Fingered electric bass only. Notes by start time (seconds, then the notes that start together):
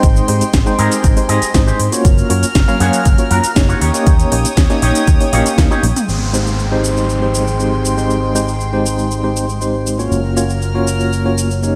0.03 G#1
0.29 G#2
0.42 muted fingered electric bass stroke
0.54 G#1
0.79 G#2
1.04 G#1
1.29 G#2
1.42 muted fingered electric bass stroke
1.54 G#1
1.80 G#2
2.05 F#1
2.30 F#2
2.43 muted fingered electric bass stroke
2.55 F#1
2.80 F#2
3.06 F#1
3.31 F#2
3.44 muted fingered electric bass stroke
3.56 F#1
3.82 D#2
4.07 D#2
4.32 A#1
4.45 muted fingered electric bass stroke
4.57 D#2
4.83 A#1
5.08 D#2
5.33 A#1
5.46 muted fingered electric bass stroke
5.58 D#2
5.83 A#1
6.08 G#1
10.12 F#1